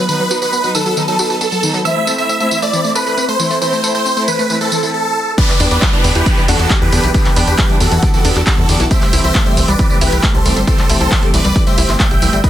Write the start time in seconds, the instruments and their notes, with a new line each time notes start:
0.09 synth arpeggio sound D#3, string section F#3 B3 D#4 B4, supersaw synth B4, tambourine
0.20 synth arpeggio sound F#3
0.31 string section F#3 B3 D#4 B4, synth arpeggio sound F#4, tambourine
0.42 synth arpeggio sound F#4, supersaw synth B4, tambourine
0.53 synth arpeggio sound B3, tambourine
0.64 synth arpeggio sound F#3, string section F#3 B3 D#4 B4, tambourine
0.75 synth arpeggio sound D#3, supersaw synth A4, tambourine
0.86 synth arpeggio sound F#3, tambourine
0.97 synth arpeggio sound D#3, string section F#3 B3 D#4 B4, tambourine
1.08 synth arpeggio sound F#3, string section F#3 B3 D#4 B4, supersaw synth A4, tambourine
1.19 string section F#3 B3 D#4 B4, synth arpeggio sound F#4, tambourine
1.30 synth arpeggio sound F#4, tambourine
1.41 synth arpeggio sound B3, supersaw synth A4, tambourine
1.52 synth arpeggio sound F#3, tambourine
1.63 synth arpeggio sound D#3, string section F#3 B3 D#4 B4, tambourine
1.74 synth arpeggio sound F#3, tambourine
1.85 synth arpeggio sound E3, string section A3 C4 E4 C5, supersaw synth E5, tambourine
1.96 synth arpeggio sound A3
2.07 string section A3 C4 E4 C5, synth arpeggio sound A4, tambourine
2.18 synth arpeggio sound A4, supersaw synth E5, tambourine
2.29 synth arpeggio sound C4, tambourine
2.40 string section A3 C4 E4 C5, synth arpeggio sound A3, supersaw synth E5, tambourine
2.51 synth arpeggio sound E3, tambourine
2.62 synth arpeggio sound A3, supersaw synth D5, tambourine
2.73 synth arpeggio sound E3, string section A3 C4 E4 C5, tambourine
2.84 synth arpeggio sound A3, string section A3 C4 E4 C5, tambourine
2.95 string section A3 C4 E4 C5, synth arpeggio sound A4, supersaw synth B4, tambourine
3.06 synth arpeggio sound A4, tambourine
3.17 synth arpeggio sound C4, tambourine
3.28 synth arpeggio sound A3, supersaw synth C5, tambourine
3.39 synth arpeggio sound E3, string section A3 C4 E4 C5, tambourine
3.50 synth arpeggio sound A3, tambourine
3.61 synth arpeggio sound E3, string section A3 C4 E4 C5, supersaw synth C5, tambourine
3.73 synth arpeggio sound A3, tambourine
3.84 string section A3 C4 E4 C5, synth arpeggio sound A4, tambourine
3.95 synth arpeggio sound A4, supersaw synth C5, tambourine
4.06 synth arpeggio sound C4, tambourine
4.17 synth arpeggio sound A3, string section A3 C4 E4 C5, tambourine
4.28 synth arpeggio sound E3, supersaw synth B4, tambourine
4.39 synth arpeggio sound A3, tambourine
4.50 synth arpeggio sound E3, string section A3 C4 E4 C5, tambourine
4.61 synth arpeggio sound A3, string section A3 C4 E4 C5, supersaw synth A4, tambourine
4.72 synth arpeggio sound E3, string section A3 C4 E4 C5, tambourine
4.83 synth arpeggio sound E3, tambourine
4.94 supersaw synth A4
5.38 synth arpeggio sound D3, string section E3 B3 D4 G4, supersaw synth B4 D5, kick, closed hi-hat, crash, tambourine, downlifter
5.49 synth arpeggio sound E3, clap, closed hi-hat, tambourine
5.60 analog synth bass E2, string section E3 B3 D4 G4, synth arpeggio sound D4, open hi-hat, tambourine
5.71 analog synth bass E2, synth arpeggio sound D4, supersaw synth B4 D5, closed hi-hat, tambourine
5.82 synth arpeggio sound G3, kick, clap, closed hi-hat, tambourine
5.93 string section E3 B3 D4 G4, synth arpeggio sound E3, supersaw synth B4 D5, closed hi-hat
6.04 analog synth bass E2, synth arpeggio sound D3, open hi-hat, tambourine
6.15 analog synth bass E2, synth arpeggio sound E3, supersaw synth G4 B4, closed hi-hat, tambourine
6.26 synth arpeggio sound D3, string section E3 B3 D4 G4, kick, closed hi-hat, tambourine
6.37 synth arpeggio sound E3, string section E3 B3 D4 G4, tambourine
6.48 analog synth bass E2, string section E3 B3 D4 G4, synth arpeggio sound D4, supersaw synth F#4 A4, open hi-hat, tambourine
6.59 analog synth bass E2, synth arpeggio sound D4, closed hi-hat, tambourine
6.70 synth arpeggio sound G3, kick, clap, closed hi-hat, tambourine
6.81 analog synth bass E2, synth arpeggio sound E3, supersaw synth G4 B4
6.92 analog synth bass E2, synth arpeggio sound D3, string section E3 B3 D4 G4, open hi-hat, tambourine
7.03 analog synth bass B1, synth arpeggio sound E3, closed hi-hat, tambourine
7.14 synth arpeggio sound D3, string section E3 B3 D4 G4, supersaw synth G4 B4, kick, closed hi-hat, tambourine
7.25 synth arpeggio sound E3, clap, closed hi-hat, tambourine
7.36 analog synth bass E2, string section E3 B3 D4 G4, synth arpeggio sound D4, open hi-hat, tambourine
7.47 analog synth bass E2, synth arpeggio sound D4, supersaw synth G4 B4, closed hi-hat, tambourine
7.58 synth arpeggio sound G3, kick, clap, closed hi-hat, tambourine
7.69 string section E3 B3 D4 G4, synth arpeggio sound E3, closed hi-hat
7.80 analog synth bass E2, synth arpeggio sound D3, supersaw synth F#4 A4, open hi-hat, tambourine
7.92 analog synth bass E2, synth arpeggio sound E3, closed hi-hat, tambourine
8.03 synth arpeggio sound D3, string section E3 B3 D4 G4, kick, closed hi-hat, tambourine
8.13 string section E3 B3 D4 G4, synth arpeggio sound E3, supersaw synth F#4 A4, tambourine
8.25 analog synth bass E2, string section E3 B3 D4 G4, synth arpeggio sound D4, open hi-hat, tambourine
8.36 analog synth bass E2, synth arpeggio sound D4, clap, closed hi-hat, tambourine
8.47 synth arpeggio sound G3, supersaw synth F#4 A4, kick, clap, closed hi-hat, tambourine
8.58 analog synth bass E2, synth arpeggio sound E3
8.69 analog synth bass E2, synth arpeggio sound D3, string section E3 B3 D4 G4, open hi-hat, tambourine
8.80 analog synth bass B1, synth arpeggio sound E3, closed hi-hat, tambourine
8.91 synth arpeggio sound E3, string section E3 A3 C4 G4, supersaw synth C5 E5, kick, closed hi-hat, tambourine
9.02 synth arpeggio sound G3, clap, closed hi-hat, tambourine
9.13 analog synth bass C2, string section E3 A3 C4 G4, synth arpeggio sound E4, open hi-hat, tambourine
9.24 analog synth bass C2, synth arpeggio sound E4, supersaw synth C5 E5, closed hi-hat, tambourine
9.35 synth arpeggio sound A3, kick, clap, closed hi-hat, tambourine
9.46 string section E3 A3 C4 G4, synth arpeggio sound G3, supersaw synth C5 E5, closed hi-hat
9.57 analog synth bass C2, synth arpeggio sound E3, open hi-hat, tambourine
9.68 analog synth bass C2, synth arpeggio sound G3, supersaw synth B4 D5, closed hi-hat, tambourine
9.79 synth arpeggio sound E3, string section E3 A3 C4 G4, kick, closed hi-hat, tambourine
9.90 string section E3 A3 C4 G4, synth arpeggio sound G3, tambourine
10.01 analog synth bass C2, string section E3 A3 C4 G4, synth arpeggio sound E4, supersaw synth G4 B4, open hi-hat, tambourine
10.12 analog synth bass C2, synth arpeggio sound E4, closed hi-hat, tambourine
10.23 synth arpeggio sound A3, kick, clap, closed hi-hat, tambourine
10.34 analog synth bass C2, synth arpeggio sound G3, supersaw synth A4 C5
10.45 analog synth bass C2, synth arpeggio sound E3, string section E3 A3 C4 G4, open hi-hat, tambourine
10.56 analog synth bass G1, synth arpeggio sound G3, closed hi-hat, tambourine
10.67 synth arpeggio sound E3, string section E3 A3 C4 G4, supersaw synth A4 C5, kick, closed hi-hat, tambourine
10.78 synth arpeggio sound G3, clap, closed hi-hat, tambourine
10.89 analog synth bass C2, string section E3 A3 C4 G4, synth arpeggio sound E4, open hi-hat, tambourine
11.01 analog synth bass C2, synth arpeggio sound E4, supersaw synth A4 C5, closed hi-hat, tambourine
11.12 synth arpeggio sound A3, kick, clap, closed hi-hat, tambourine
11.23 string section E3 A3 C4 G4, synth arpeggio sound G3, closed hi-hat
11.34 analog synth bass C2, synth arpeggio sound E3, supersaw synth B4 D5, open hi-hat, tambourine
11.45 analog synth bass C2, synth arpeggio sound G3, closed hi-hat, tambourine
11.56 string section E3 A3 C4 G4, synth arpeggio sound E3, kick, closed hi-hat, tambourine
11.67 string section E3 A3 C4 G4, synth arpeggio sound G3, supersaw synth C5 E5, closed hi-hat, tambourine
11.78 analog synth bass C2, string section E3 A3 C4 G4, synth arpeggio sound E4, open hi-hat, tambourine
11.89 analog synth bass G1, synth arpeggio sound E4, clap, closed hi-hat, tambourine
12.00 synth arpeggio sound A3, supersaw synth E5 G5, kick, clap, closed hi-hat, tambourine
12.11 analog synth bass A1, synth arpeggio sound G3, closed hi-hat, tambourine
12.22 analog synth bass C2, synth arpeggio sound E3, string section E3 A3 C4 G4, open hi-hat, tambourine
12.33 analog synth bass G1, synth arpeggio sound G3, closed hi-hat, tambourine
12.44 synth arpeggio sound D#3, string section D#3 F#3 B3 F#4, supersaw synth B4 D#5, kick, closed hi-hat, tambourine